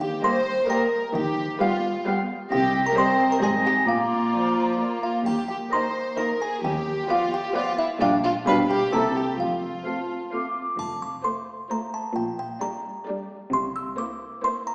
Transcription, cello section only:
0.00 0.13 D#3 medium
1.14 1.50 D#3 medium
2.52 2.87 C3 medium
3.42 3.78 G#2 medium
3.88 4.24 A#2 medium
5.26 5.62 D#2 soft
6.63 7.00 D#2 medium
8.01 8.37 A#2 medium
8.47 8.83 B2 medium
8.92 9.29 C3 medium
9.39 9.76 F2 soft
10.78 11.14 F2 soft
12.15 12.52 A#2 medium
13.52 13.89 C3 medium

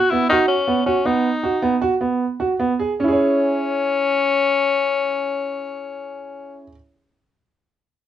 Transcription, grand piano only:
0.12 0.23 B3 medium
0.30 0.52 F#4 loud
0.68 0.78 B3 medium
0.86 0.97 F#4 medium
1.05 1.27 B3 medium
1.43 1.54 F#4 medium
1.62 1.73 B3 medium
1.82 1.93 F#4 loud
2.01 2.23 B3 medium
2.40 2.51 F#4 medium
2.59 2.71 B3 medium
2.79 2.91 G#4 medium
3.00 6.62 C#4 medium
3.00 6.66 E4 medium
3.08 6.70 G#4 medium
3.12 6.74 C#5 medium

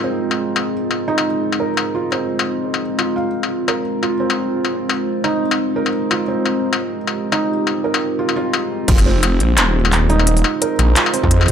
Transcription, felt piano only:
0.00 0.72 C4 medium
0.00 1.08 D#4 medium
0.00 1.95 F4 medium
0.00 1.60 A#4 medium
1.08 1.24 D#4 medium
1.60 1.71 A#4 medium
1.95 2.06 F4 medium
2.12 2.80 C4 medium
2.99 3.14 F4 medium
3.16 3.27 F5 medium
3.68 3.79 A#4 medium
4.02 4.13 F4 medium
4.20 4.88 C4 medium
5.24 5.41 D#4 loud
5.76 5.87 A#4 medium
6.11 6.22 F4 medium
6.28 6.96 C4 medium
7.32 7.49 D#4 medium
7.84 7.95 A#4 medium
8.19 8.30 F4 medium
8.36 8.52 F4 medium
8.88 8.99 F4 medium
9.06 9.73 C4 medium
10.10 10.26 D#4 loud
10.62 10.73 A#4 medium
10.96 11.07 F4 medium
11.14 11.52 C4 medium

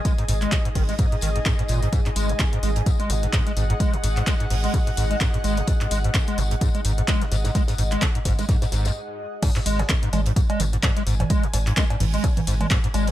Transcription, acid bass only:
0.05 0.12 G#3 medium
0.18 0.24 G#2 medium
0.29 0.33 G#2 loud
0.42 0.53 G#3 loud
0.52 0.56 G#2 loud
0.65 0.69 G#2 medium
0.75 0.83 D#3 medium
0.89 0.94 G#3 medium
0.99 1.06 G#2 medium
1.12 1.15 G#2 loud
1.22 1.30 D#3 medium
1.36 1.39 G#2 medium
1.46 1.53 G#2 medium
1.59 1.62 G#2 medium
1.69 1.80 A#2 medium
1.83 1.88 G#2 medium
1.93 2.00 G#2 medium
2.06 2.09 G#2 loud
2.16 2.31 G#3 loud
2.29 2.33 G#2 loud
2.40 2.44 G#2 medium
2.53 2.58 G#2 medium
2.63 2.70 G#3 medium
2.76 2.82 G#2 medium
2.86 2.91 G#2 loud
3.00 3.11 G#3 loud
3.10 3.14 G#2 medium
3.23 3.26 G#2 medium
3.33 3.41 G#2 medium
3.47 3.52 G#3 medium
3.57 3.64 G#2 medium
3.70 3.73 G#2 medium
3.80 3.95 G#3 loud
3.93 3.97 G#2 loud
4.03 4.08 G#2 medium
4.17 4.22 G#2 medium
4.27 4.34 G#3 medium
4.40 4.46 G#2 medium
4.50 4.55 G#2 loud
4.64 4.75 G#3 medium
4.74 4.78 G#2 loud
4.87 4.90 G#2 medium
4.97 5.05 G#2 medium
5.11 5.16 G#3 medium
5.21 5.28 G#2 medium
5.34 5.37 G#2 loud
5.44 5.59 G#3 loud
5.57 5.61 G#2 loud
5.67 5.72 G#2 medium
5.81 5.86 G#2 medium
5.91 5.98 G#3 medium
6.04 6.10 G#2 medium
6.14 6.19 G#2 loud
6.28 6.39 G#3 loud
6.38 6.42 G#2 loud
6.51 6.55 G#2 medium
6.61 6.69 G#2 medium
6.75 6.80 G#3 medium
6.85 6.92 G#2 medium
6.98 7.01 G#2 loud
7.08 7.23 G#3 loud
7.21 7.25 G#2 loud
7.32 7.36 G#2 medium
7.45 7.51 G#2 medium
7.55 7.62 G#3 medium
7.68 7.74 G#2 medium
7.78 7.83 G#2 loud
7.92 8.03 G#3 loud
8.02 8.06 G#2 loud
8.15 8.19 G#2 medium
8.25 8.33 G#2 medium
8.39 8.44 G#3 medium
8.49 8.56 G#2 medium
8.62 8.65 G#2 loud
8.72 8.87 G#2 medium
8.85 8.91 F#2 loud
9.43 9.50 G#2 medium
9.56 9.59 G#2 loud
9.66 9.81 G#3 loud
9.79 9.83 G#2 loud
9.89 9.94 G#2 medium
10.03 10.08 G#2 medium
10.13 10.20 G#3 medium
10.26 10.32 G#2 medium
10.36 10.41 G#2 loud
10.50 10.61 G#3 loud
10.60 10.64 G#2 loud
10.73 10.76 G#2 medium
10.83 10.91 G#2 medium
10.97 11.02 G#3 medium
11.07 11.14 G#2 medium
11.20 11.23 G#2 loud
11.30 11.45 G#3 loud
11.43 11.47 G#2 loud
11.54 11.58 G#2 medium
11.67 11.72 G#2 medium
11.77 11.84 G#3 medium
11.90 11.96 G#2 medium
12.00 12.05 G#2 loud
12.14 12.25 G#3 loud
12.24 12.28 G#2 loud
12.37 12.40 G#2 medium
12.47 12.55 G#2 medium
12.61 12.66 G#3 medium
12.71 12.78 G#2 medium
12.84 12.87 G#2 loud
12.94 13.09 G#3 loud
13.07 13.11 G#2 loud

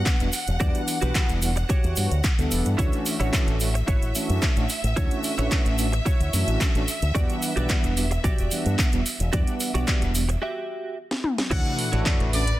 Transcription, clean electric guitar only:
0.60 0.81 F#4 loud
0.60 0.81 G4 loud
0.60 0.81 D5 loud
1.01 1.29 F#4 medium
1.01 1.29 G4 medium
1.01 1.30 B4 medium
1.56 muted clean electric guitar stroke medium
1.69 2.24 F#4 medium
1.69 2.24 G4 medium
1.69 2.24 C#5 loud
2.78 2.99 E4 loud
2.78 2.99 F#4 loud
2.78 3.00 C#5 loud
3.19 3.47 E4 medium
3.19 3.47 F#4 medium
3.19 3.48 C#5 medium
3.74 muted clean electric guitar stroke medium
3.87 4.42 E4 medium
3.87 4.42 F#4 medium
3.87 4.43 C#5 medium
4.96 5.17 E4 loud
4.96 5.18 F#4 loud
4.96 5.18 C#5 loud
5.38 5.65 E4 medium
5.38 5.66 F#4 medium
5.38 5.66 C#5 medium
5.92 muted clean electric guitar stroke medium
6.05 6.60 E4 medium
6.05 6.60 F#4 medium
6.05 6.61 C#5 medium
7.15 7.36 F#4 loud
7.15 7.36 G4 loud
7.15 7.36 D5 loud
7.56 7.84 F#4 medium
7.56 7.84 G4 medium
7.56 7.84 D5 medium
8.11 muted clean electric guitar stroke medium
8.24 8.78 F#4 medium
8.24 8.79 G4 medium
8.24 8.79 D5 medium
9.33 9.54 F#4 loud
9.33 9.54 G4 loud
9.33 9.54 D5 loud
9.74 10.02 F#4 medium
9.74 10.02 G4 medium
9.74 10.02 D5 medium
10.29 muted clean electric guitar stroke medium
10.42 10.96 F#4 medium
10.42 10.97 G4 medium
10.42 10.97 E5 loud
11.51 11.72 E4 loud
11.51 11.72 F#4 loud
11.51 11.72 C#5 medium
11.51 11.72 D5 loud
11.92 12.26 E4 medium
11.92 12.27 F#4 medium
11.92 12.27 C#5 medium
11.92 12.27 D5 medium

